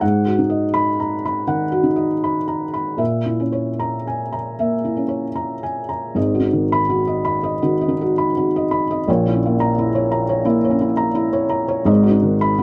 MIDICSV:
0, 0, Header, 1, 2, 480
1, 0, Start_track
1, 0, Key_signature, 5, "minor"
1, 0, Tempo, 730816
1, 14, Time_signature, 4, 2, 24, 8
1, 1455, Tempo, 789474
1, 3855, Tempo, 744417
1, 4335, Tempo, 723764
1, 5775, Tempo, 702576
1, 8201, End_track
2, 0, Start_track
2, 0, Title_t, "Felt piano"
2, 0, Program_c, 0, 0
2, 0, Control_c, 0, 64, 127
2, 7, Note_on_c, 0, 78, 64
2, 13, Note_on_c, 0, 44, 64
2, 26, Control_c, 0, 64, 0
2, 149, Control_c, 0, 64, 127
2, 172, Note_on_c, 0, 66, 45
2, 254, Note_on_c, 0, 63, 53
2, 261, Note_off_c, 0, 78, 0
2, 325, Note_on_c, 0, 75, 48
2, 424, Note_off_c, 0, 66, 0
2, 484, Note_on_c, 0, 83, 78
2, 580, Note_off_c, 0, 75, 0
2, 632, Note_off_c, 0, 63, 0
2, 655, Note_on_c, 0, 82, 46
2, 739, Note_off_c, 0, 83, 0
2, 809, Note_off_c, 0, 82, 0
2, 824, Note_on_c, 0, 83, 55
2, 937, Note_off_c, 0, 44, 0
2, 966, Note_on_c, 0, 51, 49
2, 970, Note_on_c, 0, 78, 56
2, 1071, Note_off_c, 0, 83, 0
2, 1129, Note_on_c, 0, 66, 51
2, 1205, Note_on_c, 0, 63, 49
2, 1227, Note_off_c, 0, 78, 0
2, 1287, Note_on_c, 0, 75, 50
2, 1356, Note_off_c, 0, 51, 0
2, 1390, Note_off_c, 0, 66, 0
2, 1468, Note_on_c, 0, 83, 53
2, 1547, Note_off_c, 0, 75, 0
2, 1593, Note_off_c, 0, 63, 0
2, 1614, Note_on_c, 0, 82, 41
2, 1712, Note_off_c, 0, 83, 0
2, 1770, Note_off_c, 0, 82, 0
2, 1771, Note_on_c, 0, 83, 47
2, 1916, Note_on_c, 0, 46, 53
2, 1920, Note_on_c, 0, 76, 54
2, 1930, Note_off_c, 0, 83, 0
2, 1941, Control_c, 0, 64, 0
2, 2048, Control_c, 0, 64, 127
2, 2089, Note_on_c, 0, 64, 45
2, 2173, Note_on_c, 0, 61, 43
2, 2182, Note_off_c, 0, 76, 0
2, 2251, Note_on_c, 0, 73, 44
2, 2348, Note_off_c, 0, 64, 0
2, 2415, Note_on_c, 0, 82, 60
2, 2511, Note_off_c, 0, 73, 0
2, 2561, Note_off_c, 0, 61, 0
2, 2585, Note_on_c, 0, 80, 39
2, 2674, Note_off_c, 0, 82, 0
2, 2738, Note_on_c, 0, 82, 45
2, 2741, Note_off_c, 0, 80, 0
2, 2865, Note_off_c, 0, 46, 0
2, 2900, Note_on_c, 0, 58, 41
2, 2900, Note_on_c, 0, 76, 50
2, 2991, Note_off_c, 0, 82, 0
2, 3054, Note_on_c, 0, 64, 42
2, 3127, Note_on_c, 0, 61, 40
2, 3152, Note_off_c, 0, 76, 0
2, 3199, Note_on_c, 0, 73, 44
2, 3281, Note_off_c, 0, 58, 0
2, 3310, Note_off_c, 0, 64, 0
2, 3364, Note_on_c, 0, 82, 45
2, 3465, Note_off_c, 0, 73, 0
2, 3518, Note_off_c, 0, 61, 0
2, 3532, Note_on_c, 0, 80, 41
2, 3629, Note_off_c, 0, 82, 0
2, 3689, Note_on_c, 0, 82, 42
2, 3696, Note_off_c, 0, 80, 0
2, 3846, Note_on_c, 0, 32, 60
2, 3850, Note_off_c, 0, 82, 0
2, 3853, Note_on_c, 0, 75, 55
2, 3856, Note_on_c, 0, 44, 61
2, 3868, Control_c, 0, 64, 0
2, 3973, Note_on_c, 0, 66, 52
2, 3995, Control_c, 0, 64, 127
2, 4008, Note_on_c, 0, 63, 43
2, 4048, Note_off_c, 0, 75, 0
2, 4091, Note_on_c, 0, 51, 52
2, 4167, Note_off_c, 0, 66, 0
2, 4217, Note_on_c, 0, 83, 73
2, 4268, Note_off_c, 0, 63, 0
2, 4285, Note_off_c, 0, 51, 0
2, 4327, Note_on_c, 0, 66, 58
2, 4406, Note_off_c, 0, 83, 0
2, 4444, Note_on_c, 0, 75, 55
2, 4523, Note_off_c, 0, 66, 0
2, 4561, Note_on_c, 0, 83, 58
2, 4641, Note_off_c, 0, 75, 0
2, 4685, Note_on_c, 0, 75, 59
2, 4759, Note_off_c, 0, 83, 0
2, 4784, Note_off_c, 0, 32, 0
2, 4789, Note_off_c, 0, 44, 0
2, 4810, Note_on_c, 0, 66, 58
2, 4813, Note_on_c, 0, 51, 51
2, 4883, Note_off_c, 0, 75, 0
2, 4936, Note_on_c, 0, 75, 48
2, 4982, Note_on_c, 0, 63, 50
2, 5006, Note_off_c, 0, 66, 0
2, 5068, Note_on_c, 0, 66, 56
2, 5072, Note_off_c, 0, 51, 0
2, 5129, Note_off_c, 0, 75, 0
2, 5179, Note_on_c, 0, 83, 60
2, 5237, Note_off_c, 0, 63, 0
2, 5255, Note_off_c, 0, 66, 0
2, 5305, Note_on_c, 0, 66, 56
2, 5370, Note_off_c, 0, 83, 0
2, 5431, Note_on_c, 0, 75, 58
2, 5492, Note_off_c, 0, 66, 0
2, 5532, Note_on_c, 0, 83, 62
2, 5615, Note_off_c, 0, 75, 0
2, 5661, Note_on_c, 0, 75, 61
2, 5724, Note_off_c, 0, 83, 0
2, 5775, Note_on_c, 0, 34, 69
2, 5777, Note_off_c, 0, 75, 0
2, 5785, Control_c, 0, 64, 0
2, 5785, Note_on_c, 0, 46, 70
2, 5789, Note_on_c, 0, 73, 60
2, 5886, Control_c, 0, 64, 127
2, 5904, Note_on_c, 0, 64, 54
2, 5946, Note_on_c, 0, 61, 50
2, 5977, Note_off_c, 0, 73, 0
2, 6032, Note_on_c, 0, 58, 60
2, 6095, Note_off_c, 0, 64, 0
2, 6132, Note_on_c, 0, 82, 71
2, 6199, Note_off_c, 0, 61, 0
2, 6218, Note_off_c, 0, 58, 0
2, 6257, Note_on_c, 0, 64, 60
2, 6326, Note_off_c, 0, 82, 0
2, 6370, Note_on_c, 0, 73, 59
2, 6447, Note_off_c, 0, 64, 0
2, 6484, Note_on_c, 0, 82, 68
2, 6562, Note_off_c, 0, 73, 0
2, 6603, Note_on_c, 0, 73, 62
2, 6678, Note_off_c, 0, 82, 0
2, 6703, Note_off_c, 0, 34, 0
2, 6709, Note_off_c, 0, 46, 0
2, 6713, Note_on_c, 0, 64, 67
2, 6715, Note_on_c, 0, 58, 63
2, 6797, Note_off_c, 0, 73, 0
2, 6845, Note_on_c, 0, 73, 57
2, 6884, Note_on_c, 0, 61, 58
2, 6911, Note_off_c, 0, 64, 0
2, 6956, Note_on_c, 0, 64, 60
2, 6976, Note_off_c, 0, 58, 0
2, 7037, Note_off_c, 0, 73, 0
2, 7067, Note_on_c, 0, 82, 71
2, 7141, Note_off_c, 0, 61, 0
2, 7154, Note_off_c, 0, 64, 0
2, 7189, Note_on_c, 0, 64, 66
2, 7271, Note_off_c, 0, 82, 0
2, 7313, Note_on_c, 0, 73, 66
2, 7393, Note_off_c, 0, 64, 0
2, 7426, Note_on_c, 0, 82, 60
2, 7517, Note_off_c, 0, 73, 0
2, 7555, Note_on_c, 0, 73, 62
2, 7634, Note_off_c, 0, 82, 0
2, 7670, Note_on_c, 0, 32, 80
2, 7673, Note_on_c, 0, 44, 80
2, 7677, Note_on_c, 0, 75, 79
2, 7686, Note_off_c, 0, 73, 0
2, 7706, Control_c, 0, 64, 0
2, 7794, Note_on_c, 0, 66, 64
2, 7801, Control_c, 0, 64, 127
2, 7844, Note_on_c, 0, 63, 58
2, 7879, Note_off_c, 0, 75, 0
2, 7927, Note_on_c, 0, 51, 65
2, 7997, Note_off_c, 0, 66, 0
2, 8053, Note_on_c, 0, 83, 83
2, 8105, Note_off_c, 0, 63, 0
2, 8123, Note_off_c, 0, 51, 0
2, 8172, Note_on_c, 0, 66, 73
2, 8201, Note_off_c, 0, 32, 0
2, 8201, Note_off_c, 0, 44, 0
2, 8201, Note_off_c, 0, 66, 0
2, 8201, Note_off_c, 0, 83, 0
2, 8201, End_track
0, 0, End_of_file